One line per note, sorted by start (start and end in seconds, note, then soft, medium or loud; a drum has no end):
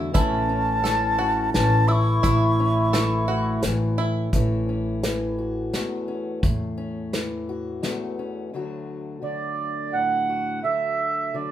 0.00 0.15 D2 medium
0.00 0.11 E2 loud
0.00 0.13 D3 medium
0.00 0.14 F#3 medium
0.00 0.14 A3 medium
0.00 0.13 E4 medium
0.00 0.11 F#4 medium
0.13 1.50 A1 medium
0.13 2.24 A2 medium
0.13 0.83 E3 medium
0.13 1.20 A3 medium
0.13 1.49 C#4 medium
0.13 0.49 C#4 medium
0.13 0.83 E4 medium
0.13 1.89 E4 medium
0.13 1.50 A5 medium
0.13 kick medium
0.13 closed hi-hat medium
0.49 2.59 C#4 medium
0.84 1.54 E3 medium
0.84 1.18 A4 medium
0.84 snare medium
0.84 closed hi-hat medium
1.19 3.29 A3 medium
1.19 1.87 F#4 medium
1.52 2.21 A1 loud
1.52 2.92 E3 medium
1.52 1.85 C#4 medium
1.52 1.90 A5 medium
1.52 snare medium
1.52 closed hi-hat soft
1.87 3.62 E4 loud
1.87 2.22 E4 medium
1.87 3.99 E4 medium
1.87 1.93 E6 medium
1.92 3.63 C#6 medium
2.23 3.59 A1 medium
2.23 4.32 A2 medium
2.23 2.92 E4 medium
2.23 kick medium
2.23 closed hi-hat medium
2.60 4.29 C#4 medium
2.92 3.62 E3 medium
2.92 3.27 A4 medium
2.92 snare medium
2.92 closed hi-hat medium
3.28 4.29 A3 medium
3.28 3.96 F#4 medium
3.63 4.29 A1 loud
3.63 4.29 E3 medium
3.63 snare medium
3.63 closed hi-hat medium
3.98 4.32 E4 medium
3.98 4.29 E4 medium
4.33 5.69 A1 medium
4.33 5.73 A2 medium
4.33 5.03 E3 medium
4.33 5.74 A3 medium
4.33 4.68 C#4 medium
4.33 5.38 E4 medium
4.33 kick medium
4.33 closed hi-hat medium
4.69 6.07 C#4 medium
5.03 6.39 E3 medium
5.03 snare medium
5.03 closed hi-hat medium
5.38 6.39 F#4 medium
5.73 6.39 E2 medium
5.73 7.83 A3 medium
5.73 snare medium
5.73 closed hi-hat soft
6.08 6.39 C#4 soft
6.43 7.79 E2 loud
6.43 7.83 A2 medium
6.43 kick medium
6.43 closed hi-hat soft
6.78 8.18 C#4 medium
7.13 8.49 E3 medium
7.13 snare medium
7.13 closed hi-hat soft
7.49 8.49 F#4 medium
7.83 8.49 E2 medium
7.83 8.49 A3 medium
7.83 snare medium
7.83 closed hi-hat soft
8.19 8.49 C#4 soft
8.53 10.62 D2 medium
8.53 9.21 D3 soft
8.53 9.22 F#3 soft
8.53 10.63 A3 soft
8.53 10.28 F#4 medium
9.22 11.33 D3 soft
9.22 11.33 F#3 soft
9.22 9.96 D5 medium
9.93 10.64 A2 medium
9.93 10.60 F#5 medium
10.29 10.60 F#4 soft
10.63 11.52 D2 medium
10.63 11.52 A3 soft
10.63 11.36 E5 medium
11.34 11.52 D3 soft
11.34 11.52 F#3 soft
11.34 11.52 D5 medium